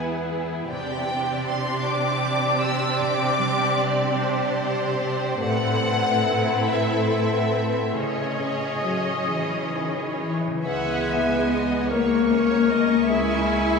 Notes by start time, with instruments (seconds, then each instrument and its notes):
Already playing: cello section E2, harp E3 G#3 E4 G#4 B4, viola section B3 E4, violin section G#4 B4
0.31 harp E4
0.69 harp C3, cello section C3, viola section C4 D4, violin section G4 D5 G5
1.09 harp C4
1.48 harp D4, violin section C6
1.86 harp D5, violin section D6
2.24 harp D4
2.61 harp C4, violin section E6
2.99 harp C3, violin section D6
3.38 harp G3
3.76 harp D4, violin section D5
4.15 harp G4, violin section C5
4.57 harp D4
4.99 harp C4
5.41 harp A2, cello section A2, viola section C4 E4, violin section A4 B4 F#5
5.83 harp C4
6.25 harp E4
6.66 harp B4, violin section E5
7.08 harp E4
7.51 harp C4
7.94 harp C#3, cello section C#3, viola section C#4 D#5, violin section G#4 C#5
8.39 harp C#4
8.83 cello section F#3, clarinet F#4, harp D#5
9.26 cello section C#3 E3, clarinet E4, harp G#4
9.73 cello section D#3
10.20 cello section E3, harp C#4
10.46 harp C#3
10.51 harp C#4
10.55 harp E4
10.60 harp G#4
10.65 double bass section C#2, viola section G#3, cello section B3, clarinet B4, violin section E5 F#5 G#5
11.08 violin section E5
11.48 violin section D#5
11.88 viola section A#3, cello section A#3, clarinet A#4, violin section C#5 C#6
12.28 viola section C#4, violin section C#5
12.69 viola section C#4, violin section D#5
13.08 cello section G#3, viola section E4, clarinet G#4, violin section E5 G#5